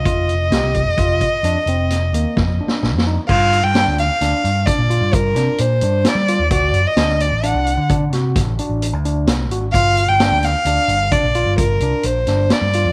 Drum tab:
CC |------------------------------------------|x-----------------------------------------|------------------------------------------|------------------------------------------|
HH |x--x--x--x--x--x--x--x--x--x--------------|---x--x--x--x--x--x--x--x--x--x--x--x--x--|x--x--x--x--x--x--x--x--x--x--x--x--x--x--|x--x--x--x--x--x--x--x--x--x--x--x--x--x--|
SD |------o-----------------o-----o---o-o-o---|------o-----o--------------o--------o-----|------o--------------o--o-----------o-----|------o--o-----------------------o--o-----|
BD |o--------o--o--o--------------o-----------|o-----------------o-----o-----------------|o-----------------o-----o-----------------|o-----------------o-----o-----------------|